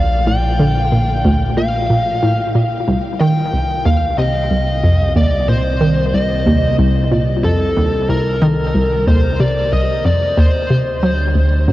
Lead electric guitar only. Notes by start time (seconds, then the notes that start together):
Already playing: F5
0.27 G5
1.57 F5
3.21 G5
3.85 F5
4.18 D#5
5.16 D5
5.49 C5
6.14 D#5
7.44 A4
8.10 A#4
9.07 C5
9.40 D5
9.73 D#5
10.05 D5
10.38 C5